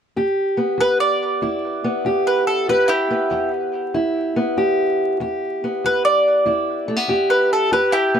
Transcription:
0.16 steel-string acoustic guitar E2 G4
0.57 steel-string acoustic guitar B3
0.78 steel-string acoustic guitar E2, mandolin B4
1.00 mandolin D5
1.42 steel-string acoustic guitar E2 E4
1.84 steel-string acoustic guitar B3
2.05 steel-string acoustic guitar E2 G4
2.27 mandolin B4
2.47 mandolin A4
2.68 steel-string acoustic guitar E2 G4, mandolin B4
2.88 mandolin E4 G4
3.10 steel-string acoustic guitar B3
3.31 steel-string acoustic guitar E2
3.94 steel-string acoustic guitar E2 E4
4.36 steel-string acoustic guitar B3
4.57 steel-string acoustic guitar E2 G4
5.20 steel-string acoustic guitar E2 G4
5.64 steel-string acoustic guitar B3
5.84 steel-string acoustic guitar E2, mandolin B4
6.05 mandolin D5
6.46 steel-string acoustic guitar E2 E4
6.88 steel-string acoustic guitar A3
6.96 steel-string acoustic guitar B3
7.08 steel-string acoustic guitar E2 G4
7.30 mandolin B4
7.53 mandolin A4
7.72 steel-string acoustic guitar E2 G4, mandolin B4
7.92 mandolin E4 G4
8.14 steel-string acoustic guitar B3

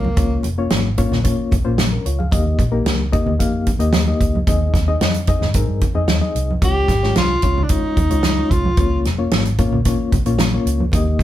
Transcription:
Already playing: fingered electric bass C2, tenor saxophone A#3
0.05 high conga
0.17 fingered electric bass C#2, reed electric piano A#3 C#4 F4 C#5, kick, closed hi-hat, muted conga
0.43 fingered electric bass F1, closed hi-hat, muted conga
0.58 reed electric piano A#3 C#4 F4 C#5
0.70 fingered electric bass G#1, snare, closed hi-hat, high conga
0.98 reed electric piano A#3 C#4 F4 C#5, kick, closed hi-hat
1.12 fingered electric bass A#1, snare, low conga
1.24 reed electric piano A#3 C#4 F4 C#5, kick, closed hi-hat, muted conga
1.51 fingered electric bass C2, kick, closed hi-hat, muted conga
1.64 fingered electric bass A#1, reed electric piano A#3 C#4 F4 C5
1.78 snare, closed hi-hat, high conga
1.92 reed electric piano C#4 A#4
2.06 fingered electric bass C#2, reed electric piano F4 C#5, closed hi-hat
2.19 reed electric piano G#4 F5, high conga
2.31 fingered electric bass D#2, reed electric piano A#3 D#4 G4 D#5, kick, closed hi-hat, muted conga
2.59 fingered electric bass A#1, kick, closed hi-hat, muted conga
2.71 reed electric piano A#3 D#4 G4 A#4
2.85 fingered electric bass C#2, snare, closed hi-hat, high conga
3.12 reed electric piano A#3 D#4 G4 D#5, kick, closed hi-hat
3.26 fingered electric bass D#2, low conga
3.39 fingered electric bass F2, reed electric piano A#3 D#4 G4 F5, kick, closed hi-hat, muted conga
3.67 kick, closed hi-hat, muted conga
3.78 fingered electric bass D#2, reed electric piano A#3 D#4 G4 D#5, closed hi-hat
3.93 snare, closed hi-hat, high conga
4.07 reed electric piano A#3 D#4 G4 D#5
4.20 fingered electric bass C#2, kick, closed hi-hat
4.35 high conga
4.47 fingered electric bass D#2, reed electric piano C4 D#4 G#4 D#5, kick, closed hi-hat, muted conga
4.74 fingered electric bass D#2, kick, snare, closed hi-hat, muted conga
4.88 reed electric piano C4 D#4 G#4 D#5
5.00 fingered electric bass F2, snare, closed hi-hat, high conga
5.14 closed hi-hat
5.27 reed electric piano C4 D#4 G#4 D#5, kick, closed hi-hat
5.41 fingered electric bass G2, snare, low conga
5.54 fingered electric bass G#2, reed electric piano C4 D#4 G#4 A#4, kick, closed hi-hat, muted conga
5.68 fingered electric bass G2
5.81 kick, closed hi-hat, muted conga
5.95 fingered electric bass F2, reed electric piano C4 D#4 G#4 D#5
6.08 fingered electric bass D#2, snare, closed hi-hat, high conga
6.21 reed electric piano C4 D#4 G#4 D#5
6.35 fingered electric bass C2, closed hi-hat
6.51 high conga
6.62 fingered electric bass C#2, reed electric piano G#3 C#4 F4 C#5, tenor saxophone G4, kick, closed hi-hat, muted conga
6.88 fingered electric bass G#1, kick, snare, closed hi-hat, muted conga
7.03 reed electric piano G#3 C#4 F4 C#5, snare
7.15 fingered electric bass C2, tenor saxophone F4, snare, closed hi-hat, high conga
7.42 fingered electric bass C#2, reed electric piano G#3 C#4 F4 C#5, kick, closed hi-hat
7.58 low conga
7.63 tenor saxophone D4
7.69 reed electric piano G#3 C#4 F4 C#5, tenor saxophone D#4, kick, closed hi-hat
7.97 fingered electric bass D#2, kick, closed hi-hat, muted conga
8.10 fingered electric bass C#2, reed electric piano G#3 C#4 F4 C#5, closed hi-hat
8.23 snare, closed hi-hat, high conga
8.38 reed electric piano G#3 C#4 F4 C#5
8.51 fingered electric bass C2, tenor saxophone F4, kick, closed hi-hat
8.65 high conga
8.77 fingered electric bass C#2, reed electric piano A#3 C#4 F4 C#5, kick, closed hi-hat, muted conga
9.04 fingered electric bass F1, snare, closed hi-hat, muted conga
9.18 reed electric piano A#3 C#4 F4 C#5
9.31 fingered electric bass G#1, snare, closed hi-hat, high conga
9.45 closed hi-hat
9.58 reed electric piano A#3 C#4 F4 C#5, kick, closed hi-hat
9.72 fingered electric bass A#1, low conga
9.85 reed electric piano A#3 C#4 F4 C#5, kick, closed hi-hat
10.12 fingered electric bass C2, kick, closed hi-hat, muted conga
10.25 fingered electric bass A#1, reed electric piano A#3 C#4 F4 C#5, closed hi-hat
10.39 snare, closed hi-hat, high conga
10.54 reed electric piano A#3 C#4 F4 C#5
10.65 fingered electric bass C#2, closed hi-hat
10.80 high conga
10.92 fingered electric bass D#2, reed electric piano A#3 D#4 G4 D#5, kick, closed hi-hat, muted conga
11.19 fingered electric bass A#1, kick, muted conga

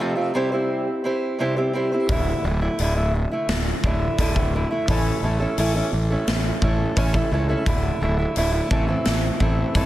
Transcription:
0.00 steel-string acoustic guitar F2 C3 F3 A3 C4 F4
0.16 steel-string acoustic guitar F3 A3 C4 F4
0.34 steel-string acoustic guitar C3 G3 C4 E4 G4 C5
0.52 steel-string acoustic guitar C4 E4 G4 C5
1.04 steel-string acoustic guitar C4 E4 G4 C5
1.39 steel-string acoustic guitar C3 G3 C4 E4 G4 C5
1.56 steel-string acoustic guitar C4 E4 G4 C5
1.73 steel-string acoustic guitar C4 E4 G4 C5
1.92 steel-string acoustic guitar C4 E4 G4 C5
2.09 fingered electric bass D1, steel-string acoustic guitar D2 A2 D3 A3 E4, kick, open hi-hat
2.44 fingered electric bass D1, steel-string acoustic guitar A2 D3 A3 E4
2.62 steel-string acoustic guitar D3 A3 E4
2.79 fingered electric bass D1, steel-string acoustic guitar D2 A2 D3 A3 E4, open hi-hat
2.96 steel-string acoustic guitar D3 A3 E4
3.15 muted steel-string acoustic guitar stroke
3.31 steel-string acoustic guitar D3 A3 E4
3.49 fingered electric bass D1, snare, open hi-hat
3.83 fingered electric bass D1, steel-string acoustic guitar A2 D3 A3 E4, kick
4.18 fingered electric bass D1, steel-string acoustic guitar D2 A2 D3 A3 E4, kick, open hi-hat
4.36 steel-string acoustic guitar D3 A3 E4, kick
4.53 steel-string acoustic guitar A2 D3 A3 E4
4.71 steel-string acoustic guitar D3 A3 E4
4.88 fingered electric bass A1, steel-string acoustic guitar A2 E3 A3 C#4 E4 A4, kick, open hi-hat
5.22 fingered electric bass A1, steel-string acoustic guitar A3 C#4 E4 A4
5.40 steel-string acoustic guitar A3 C#4 E4 A4
5.58 fingered electric bass A1, steel-string acoustic guitar A2 E3 A3 C#4 E4 A4, open hi-hat
5.75 steel-string acoustic guitar A3 C#4 E4 A4
5.92 fingered electric bass A1, muted steel-string acoustic guitar stroke
6.10 steel-string acoustic guitar A3 C#4 E4 A4
6.27 fingered electric bass A1, snare, open hi-hat
6.62 fingered electric bass A1, steel-string acoustic guitar A3 C#4 E4 A4, kick
6.96 fingered electric bass A1, steel-string acoustic guitar A2 E3 A3 C#4 E4 A4, kick, open hi-hat
7.14 steel-string acoustic guitar A3 C#4 E4 A4, kick
7.31 fingered electric bass C#2, steel-string acoustic guitar A3 C#4 E4 A4
7.49 steel-string acoustic guitar A3 C#4 E4 A4
7.66 fingered electric bass D1, steel-string acoustic guitar D2 A2 D3 A3 E4, kick, open hi-hat
8.01 fingered electric bass D1, steel-string acoustic guitar A2 D3 A3 E4
8.19 steel-string acoustic guitar D3 A3 E4
8.36 fingered electric bass D1, steel-string acoustic guitar D2 A2 D3 A3 E4, open hi-hat
8.54 steel-string acoustic guitar D3 A3 E4
8.70 fingered electric bass A1, steel-string acoustic guitar A2 E3 A3 C4 E4 A4, kick
8.88 steel-string acoustic guitar A3 C4 E4 A4
9.05 fingered electric bass A1, snare, open hi-hat
9.40 fingered electric bass A1, steel-string acoustic guitar A3 C4 E4 A4, kick
9.74 fingered electric bass G1, steel-string acoustic guitar A2 E3 A3 C4 E4 A4, kick, open hi-hat

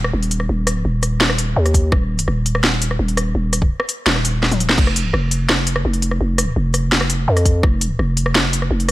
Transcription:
Already playing: 808-style bass D#1
0.04 cross-stick
0.14 808-style bass D#1
0.23 closed hi-hat
0.31 closed hi-hat
0.40 cross-stick
0.49 808-style bass D#1
0.67 cross-stick, closed hi-hat
0.85 808-style bass D#1
1.03 cross-stick, closed hi-hat
1.21 snare
1.30 cross-stick
1.38 closed hi-hat
1.56 808-style bass D#2
1.66 cross-stick, closed hi-hat
1.74 kick, closed hi-hat
1.92 808-style bass D#1, kick, cross-stick
2.19 closed hi-hat
2.28 808-style bass D#1, cross-stick
2.46 closed hi-hat
2.55 cross-stick
2.64 snare
2.82 closed hi-hat
2.91 cross-stick
2.99 808-style bass D#1
3.08 closed hi-hat
3.17 cross-stick, closed hi-hat
3.35 808-style bass D#1
3.53 cross-stick, closed hi-hat
3.62 kick
3.80 cross-stick
3.89 closed hi-hat
4.06 808-style bass D#1, snare
4.16 cross-stick
4.25 closed hi-hat
4.43 snare
4.52 closed hi-hat, high tom
4.60 closed hi-hat
4.69 snare
4.78 808-style bass F1, kick, crash
4.87 cross-stick
4.96 closed hi-hat
5.14 808-style bass F1, cross-stick
5.31 closed hi-hat
5.49 cross-stick, snare
5.67 closed hi-hat
5.76 cross-stick
5.85 808-style bass F1
5.93 closed hi-hat
6.02 closed hi-hat
6.11 cross-stick
6.21 808-style bass F1
6.38 cross-stick, closed hi-hat
6.56 808-style bass F1
6.74 cross-stick, closed hi-hat
6.92 snare
7.01 cross-stick
7.10 closed hi-hat
7.28 808-style bass F2
7.37 cross-stick, closed hi-hat
7.45 kick, closed hi-hat
7.63 808-style bass F1, kick, cross-stick
7.81 closed hi-hat
7.99 808-style bass F1, cross-stick
8.17 closed hi-hat
8.26 cross-stick
8.35 snare
8.53 closed hi-hat
8.62 cross-stick
8.71 808-style bass F1
8.80 closed hi-hat
8.89 cross-stick, closed hi-hat

